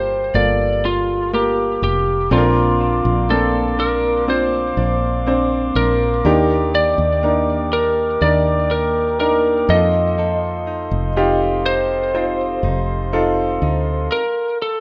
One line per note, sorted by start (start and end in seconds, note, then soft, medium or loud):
0.00 0.30 G1 medium
0.00 2.33 G2 medium
0.00 0.35 A#3 medium
0.00 0.35 F4 medium
0.00 2.33 G4 medium
0.00 0.37 C5 medium
0.34 1.78 G1 medium
0.34 1.28 A#3 medium
0.34 1.28 F4 soft
0.34 1.28 A4 medium
0.34 0.85 D5 medium
0.85 1.30 F4 medium
1.33 2.26 A#3 medium
1.33 2.27 F4 soft
1.33 1.82 G4 medium
1.33 2.27 A#4 medium
1.82 2.28 F1 medium
1.82 2.32 G4 medium
2.31 3.01 A#1 medium
2.31 3.75 A#2 soft
2.31 6.25 A#2 medium
2.31 9.65 A#3 soft
2.31 3.24 C4 medium
2.31 3.25 D4 medium
2.31 3.33 F4 medium
2.31 2.38 A4 medium
2.31 6.24 A#4 medium
2.31 6.21 F5 soft
2.31 6.20 C6 soft
2.31 9.65 D6 medium
2.38 3.28 A#4 medium
2.80 3.78 D4 soft
3.05 4.73 A#1 medium
3.30 4.23 A#3 medium
3.30 4.27 C4 soft
3.30 4.23 C4 medium
3.30 4.23 D4 medium
3.30 3.79 A4 medium
3.79 4.77 D4 soft
3.79 4.25 A#4 medium
4.28 5.21 C4 soft
4.28 5.25 C4 medium
4.28 5.21 D4 soft
4.28 5.22 F4 medium
4.28 5.76 C5 medium
4.77 5.71 A#1 medium
4.77 5.76 D4 soft
5.26 6.35 C4 medium
5.26 6.20 C4 medium
5.26 6.20 D4 medium
5.26 6.20 C5 medium
5.75 6.21 A#1 medium
5.75 6.74 D4 soft
5.75 6.70 A#4 medium
6.25 6.94 D#2 medium
6.25 9.79 D#3 medium
6.25 7.69 D#3 soft
6.25 7.18 D4 medium
6.25 7.19 D#4 medium
6.25 7.19 G4 medium
6.25 9.79 A#4 medium
6.25 9.66 G5 soft
6.74 7.71 D4 soft
6.74 7.69 D5 medium
6.98 8.17 D#2 medium
7.23 8.21 A#3 soft
7.23 8.17 D4 medium
7.23 8.17 D#4 medium
7.23 8.17 A#4 medium
7.73 8.70 D4 soft
7.73 8.23 A#4 medium
8.21 9.65 D#2 medium
8.21 9.19 A#3 soft
8.21 9.15 D4 medium
8.21 9.15 D#4 medium
8.21 9.16 A#4 medium
8.21 8.72 D5 medium
8.71 9.79 D4 medium
8.71 9.19 A#4 medium
9.20 9.79 A#3 medium
9.20 9.69 D4 medium
9.20 9.68 D#4 medium
9.20 9.70 A#4 medium
9.20 9.69 A#4 medium
9.68 10.88 F2 medium
9.68 10.18 F3 medium
9.68 11.09 D#4 medium
9.68 11.09 F4 medium
9.68 14.07 A4 soft
9.68 11.09 A4 medium
9.68 11.62 D#5 medium
9.68 14.07 F5 soft
9.68 14.07 C6 soft
10.18 14.12 F3 medium
10.18 14.12 A4 medium
10.67 11.65 D#4 soft
10.91 12.60 F1 medium
11.17 12.14 C4 soft
11.17 12.10 D#4 medium
11.17 12.10 F4 medium
11.17 12.10 G4 medium
11.66 12.63 D#4 soft
11.66 14.08 C5 medium
12.14 13.12 C4 medium
12.14 13.08 D#4 medium
12.14 13.08 F4 medium
12.14 13.08 C5 medium
12.63 13.58 F1 medium
12.63 13.61 D#4 soft
13.13 14.21 C4 soft
13.13 14.06 D#4 medium
13.13 14.07 F4 medium
13.13 14.07 A4 medium
13.62 14.08 D2 medium
13.62 14.21 D#4 soft
14.12 14.58 A#4 medium
14.62 14.80 A4 medium